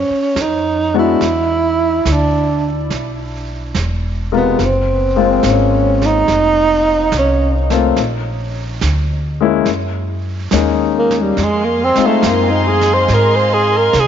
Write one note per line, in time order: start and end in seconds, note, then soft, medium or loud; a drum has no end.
0.00 0.43 C#4 medium
0.10 muted upright bass stroke soft
0.35 1.18 F2 medium
0.35 snare soft
0.35 hi-hat pedal soft
0.41 0.97 D#4 medium
0.94 1.18 G#3 medium
0.94 1.18 B3 medium
0.94 1.18 D4 medium
0.94 1.19 F#4 medium
0.99 2.14 E4 medium
1.21 2.03 E2 medium
1.21 brush sweep soft
1.21 snare soft
2.05 2.87 D2 medium
2.05 snare soft
2.05 hi-hat pedal soft
2.13 2.67 D4 medium
2.90 3.72 B1 medium
2.90 brush sweep soft
2.90 snare soft
3.75 4.56 E1 medium
3.75 snare soft
3.75 hi-hat pedal soft
4.32 4.56 C3 soft
4.32 4.56 G#3 medium
4.32 4.56 F4 medium
4.32 4.56 A#4 soft
4.36 4.67 B3 medium
4.59 5.41 F#1 medium
4.59 brush sweep soft
4.59 snare soft
4.65 5.52 C4 medium
5.16 5.40 G#3 medium
5.16 5.40 A#3 medium
5.16 5.41 C4 medium
5.16 5.41 F4 medium
5.43 6.25 G#1 medium
5.43 snare soft
5.43 hi-hat pedal soft
5.50 6.07 C#4 medium
6.02 snare soft
6.06 7.14 D#4 loud
6.28 7.10 F1 medium
6.28 brush sweep soft
6.28 snare soft
7.12 7.94 C2 medium
7.12 snare medium
7.12 hi-hat pedal soft
7.19 7.52 C#4 medium
7.70 7.94 A3 medium
7.70 7.94 A#3 medium
7.70 7.94 C4 medium
7.70 7.95 F4 medium
7.70 snare soft
7.96 8.79 A#1 medium
7.96 brush sweep soft
7.96 snare soft
8.81 9.64 D2 medium
8.81 snare medium
8.81 hi-hat pedal medium
9.41 9.64 G#3 medium
9.41 9.64 A#3 medium
9.41 9.65 C#4 medium
9.41 9.65 E4 medium
9.65 10.49 F#2 medium
9.65 brush sweep soft
9.65 snare soft
10.51 11.35 D#2 medium
10.51 11.05 G#3 medium
10.51 11.05 A#3 soft
10.51 11.05 C#4 medium
10.51 11.06 D#4 medium
10.51 snare soft
10.51 hi-hat pedal soft
10.98 11.22 A#3 medium
11.11 snare soft
11.21 11.45 G3 medium
11.36 11.93 F2 medium
11.36 14.07 G#4 medium
11.36 14.07 D#5 medium
11.36 14.07 F5 medium
11.36 14.07 C6 medium
11.36 brush sweep soft
11.36 snare soft
11.43 11.66 G#3 medium
11.65 11.86 A#3 medium
11.84 12.08 C4 medium
11.96 12.20 G#3 medium
11.96 12.20 C4 medium
11.96 12.21 D#4 soft
11.96 12.21 F4 medium
11.96 muted upright bass stroke soft
11.96 snare soft
12.06 12.31 A3 medium
12.22 13.06 F#2 medium
12.22 snare soft
12.22 hi-hat pedal soft
12.29 12.52 A#3 medium
12.50 12.69 D#4 medium
12.68 12.95 G#4 medium
12.81 snare soft
12.93 13.15 C5 medium
13.08 13.91 G#2 medium
13.08 brush sweep soft
13.08 snare soft
13.14 13.37 A#4 medium
13.36 13.55 C5 medium
13.54 13.78 G#4 medium
13.77 14.01 A#4 medium
13.93 14.07 C3 medium
13.93 snare medium
13.93 hi-hat pedal soft
14.00 14.07 G#4 medium